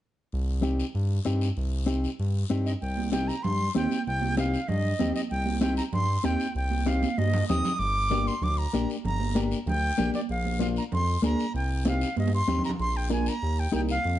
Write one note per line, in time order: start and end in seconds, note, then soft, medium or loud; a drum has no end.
0.32 0.83 C2 loud
0.32 long guiro medium
0.62 0.85 C4 medium
0.62 0.85 D#4 medium
0.62 0.85 G4 medium
0.62 short guiro medium
0.80 short guiro medium
0.95 1.20 G2 loud
0.95 long guiro medium
1.25 1.51 G2 medium
1.25 1.47 C4 medium
1.25 1.48 D#4 medium
1.25 1.48 G4 medium
1.25 short guiro medium
1.41 short guiro medium
1.57 2.07 C2 loud
1.57 long guiro medium
1.86 2.09 C4 medium
1.86 2.09 D#4 medium
1.86 2.09 G4 medium
1.86 short guiro medium
2.04 short guiro medium
2.19 2.44 G2 loud
2.19 long guiro medium
2.50 2.75 G2 medium
2.50 2.72 C4 medium
2.50 2.72 D#4 medium
2.50 2.72 G4 medium
2.50 short guiro medium
2.66 2.72 D#5 medium
2.66 short guiro medium
2.81 3.32 C2 loud
2.81 3.10 G5 medium
2.81 high conga soft
2.81 long guiro medium
2.97 high conga medium
3.12 3.34 C4 medium
3.12 3.34 D#4 medium
3.12 3.35 G4 medium
3.12 3.29 G5 medium
3.12 high conga medium
3.12 short guiro medium
3.28 3.44 A#5 medium
3.28 short guiro medium
3.43 3.69 G2 loud
3.43 3.75 C6 medium
3.43 high conga soft
3.43 low conga medium
3.43 long guiro medium
3.75 3.87 D#2 loud
3.75 3.97 C4 medium
3.75 3.97 D#4 medium
3.75 3.97 G4 medium
3.75 4.05 G5 medium
3.75 high conga medium
3.75 short guiro medium
3.91 high conga medium
3.91 short guiro medium
4.07 4.56 C2 loud
4.07 4.35 G5 medium
4.07 high conga soft
4.07 long guiro medium
4.21 high conga medium
4.37 4.59 C4 medium
4.37 4.60 D#4 medium
4.37 4.59 G4 medium
4.37 4.70 F5 medium
4.37 high conga medium
4.37 short guiro medium
4.54 short guiro medium
4.68 4.94 G2 loud
4.68 5.15 D#5 medium
4.68 high conga soft
4.68 low conga medium
4.68 long guiro medium
4.99 5.12 D#2 medium
4.99 5.21 C4 medium
4.99 5.21 D#4 medium
4.99 5.22 G4 medium
4.99 high conga medium
4.99 low conga medium
4.99 short guiro medium
5.15 5.21 D#5 medium
5.15 short guiro medium
5.30 5.81 C2 loud
5.30 5.59 G5 medium
5.30 high conga soft
5.30 long guiro medium
5.46 high conga medium
5.61 5.83 C4 medium
5.61 5.83 D#4 medium
5.61 5.84 G4 medium
5.61 5.76 G5 medium
5.61 high conga medium
5.61 short guiro medium
5.77 5.83 A#5 medium
5.77 short guiro medium
5.93 6.18 G2 loud
5.93 6.27 C6 loud
5.93 high conga soft
5.93 low conga medium
5.93 long guiro medium
6.24 6.37 D#2 medium
6.24 6.46 C4 medium
6.24 6.46 D#4 medium
6.24 6.46 G4 medium
6.24 6.56 G5 medium
6.24 high conga medium
6.24 short guiro medium
6.40 short guiro medium
6.55 7.05 C2 loud
6.55 6.89 G5 medium
6.55 high conga soft
6.55 long guiro medium
6.71 high conga medium
6.86 7.08 C4 medium
6.86 7.08 D#4 medium
6.86 7.08 G4 medium
6.86 7.20 F5 medium
6.86 high conga medium
6.86 short guiro medium
7.03 high conga medium
7.03 short guiro medium
7.18 7.43 G2 loud
7.18 7.48 D#5 loud
7.18 high conga medium
7.18 long guiro medium
7.33 low conga medium
7.48 7.62 D#2 loud
7.48 7.71 C4 medium
7.48 7.71 D#4 medium
7.48 7.71 G4 medium
7.48 7.80 D#6 loud
7.48 low conga medium
7.48 short guiro medium
7.65 low conga medium
7.65 short guiro medium
7.79 8.29 G1 loud
7.79 8.29 D6 loud
7.79 high conga soft
7.79 long guiro medium
8.11 8.33 A#3 medium
8.11 8.33 D4 medium
8.11 8.34 G4 medium
8.11 high conga medium
8.11 short guiro medium
8.27 8.45 C6 medium
8.27 short guiro medium
8.41 8.67 D2 loud
8.41 8.59 D6 loud
8.41 high conga soft
8.41 low conga medium
8.41 long guiro medium
8.58 8.89 A#5 medium
8.73 8.86 A#1 medium
8.73 8.95 A#3 medium
8.73 8.96 D4 medium
8.73 8.96 G4 medium
8.73 high conga medium
8.73 short guiro medium
8.90 short guiro medium
9.04 9.54 G1 loud
9.04 9.40 A#5 loud
9.04 high conga soft
9.04 low conga medium
9.04 long guiro medium
9.20 high conga medium
9.35 9.57 A#3 medium
9.35 9.57 D4 medium
9.35 9.58 G4 medium
9.35 high conga medium
9.35 short guiro medium
9.51 short guiro medium
9.66 9.92 D2 loud
9.66 10.11 G5 loud
9.66 high conga soft
9.66 low conga medium
9.66 long guiro medium
9.98 10.11 A#1 medium
9.98 10.20 A#3 medium
9.98 10.20 D4 medium
9.98 10.20 G4 medium
9.98 high conga medium
9.98 low conga medium
9.98 short guiro medium
10.14 10.21 D5 medium
10.14 high conga medium
10.14 short guiro medium
10.29 10.79 A#1 loud
10.29 10.59 F5 medium
10.29 high conga soft
10.29 long guiro medium
10.45 high conga medium
10.59 10.82 A#3 medium
10.59 10.82 D4 medium
10.59 10.82 F4 medium
10.59 10.67 F5 medium
10.59 high conga medium
10.59 short guiro medium
10.76 10.84 A#5 medium
10.76 short guiro medium
10.92 11.17 F2 loud
10.92 11.22 C6 loud
10.92 high conga soft
10.92 low conga medium
10.92 long guiro medium
11.22 11.35 D2 medium
11.22 11.45 A#3 medium
11.22 11.45 D4 medium
11.22 11.45 G#4 medium
11.22 11.53 A#5 medium
11.22 high conga medium
11.22 short guiro medium
11.39 short guiro medium
11.54 12.04 C2 loud
11.54 11.84 G5 medium
11.54 high conga soft
11.54 long guiro medium
11.85 12.07 C4 medium
11.85 12.08 D#4 medium
11.85 12.08 G4 medium
11.85 12.16 F5 medium
11.85 high conga medium
11.85 short guiro medium
12.01 short guiro medium
12.16 12.42 G2 loud
12.16 12.32 D#5 medium
12.16 high conga medium
12.16 long guiro medium
12.27 high conga medium
12.35 12.63 C6 loud
12.48 12.60 D#2 medium
12.48 12.70 C4 medium
12.48 12.70 D#4 medium
12.48 12.70 G4 medium
12.48 low conga medium
12.48 short guiro medium
12.58 low conga medium
12.64 12.71 A#5 medium
12.64 short guiro medium
12.70 low conga loud
12.79 13.29 A#1 loud
12.79 12.98 C6 loud
12.79 long guiro medium
12.97 13.12 G5 medium
13.10 13.32 D4 medium
13.10 13.32 F4 medium
13.10 13.32 A#4 medium
13.10 13.30 G#5 medium
13.10 high conga medium
13.10 short guiro medium
13.26 13.61 A#5 loud
13.26 short guiro medium
13.42 13.67 D#2 loud
13.42 long guiro medium
13.60 13.74 G5 medium
13.72 13.99 C2 medium
13.72 13.95 D#4 medium
13.72 13.95 G4 medium
13.72 13.95 A#4 medium
13.72 13.81 G5 medium
13.72 high conga medium
13.72 short guiro medium
13.89 14.19 F5 loud
13.89 short guiro medium
14.04 14.19 F2 loud
14.04 long guiro medium